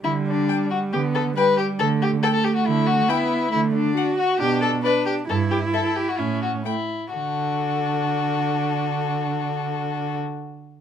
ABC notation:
X:1
M:4/4
L:1/16
Q:1/4=134
K:D
V:1 name="Violin"
z4 g4 z4 g4 | z4 g4 z4 g4 | z4 f4 z4 d4 | z4 e4 z4 g4 |
A16- | A16 |]
V:2 name="Violin"
E2 D4 F2 G2 A2 B2 G2 | A2 G2 A A G F E2 F2 E4 | E2 D4 F2 G2 A2 B2 G2 | A2 G2 A A G F E2 F2 E4 |
F16- | F16 |]
V:3 name="Viola"
G,8 B,4 G,4 | A,4 A,8 B,4 | A,4 F4 D4 D4 | E8 C4 A,2 z2 |
D16- | D16 |]
V:4 name="Cello" clef=bass
D,4 z4 D,4 z4 | D,4 z4 D,4 z4 | D,4 z4 B,,4 z4 | G,,4 z4 A,,4 z4 |
D,16- | D,16 |]